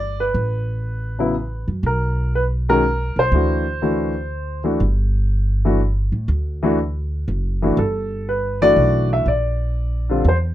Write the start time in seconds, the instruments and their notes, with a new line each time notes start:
Already playing: upright bass G1, grand piano D5
0.20 grand piano B4
0.34 upright bass A1
1.19 grand piano C#3 F#3 B3 E4
1.68 upright bass F#2
1.83 upright bass B1, grand piano A#4
2.35 grand piano B4
2.69 grand piano D#3 G#3 C#4 F#4 A#4
3.16 upright bass B1, grand piano C5
3.32 upright bass D2, grand piano E3 A3 D4 F#4
3.82 grand piano E3 A3 D4 F#4
4.64 grand piano E3 A3 D4 F#4
4.80 upright bass G1
5.65 grand piano E3 A3 D4 F#4
6.12 upright bass A2
6.28 upright bass D2
6.63 grand piano E3 A3 D4 F#4
7.28 upright bass F#1
7.62 grand piano E3 A3 D4 F#4
7.77 upright bass G1, grand piano A4
8.29 grand piano B4
8.62 grand piano E3 A3 D4 F#4 D5
8.76 upright bass B1
9.13 grand piano E5
9.26 upright bass A#1, grand piano D5
10.09 grand piano D3 G3 C4 F4
10.25 upright bass E2, grand piano C5